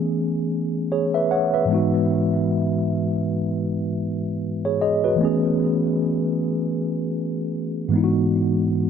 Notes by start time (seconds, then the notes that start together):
Already playing: E3 A3 B3 C#4 G#4
0.92 G#4 C#5
1.14 B4 E5
1.31 C#5 F#5
1.54 B4 E5
1.66 G#2 E3 G#3
1.71 B3 D#4 F#4
4.65 G#4 C#5
4.82 G#4 D#5
5.04 F#4 B4
5.16 E3 A3
5.21 B3 C#4
5.25 G#4
7.89 G#2 E3 G#3
7.94 B3 D#4 E4
8.04 F#4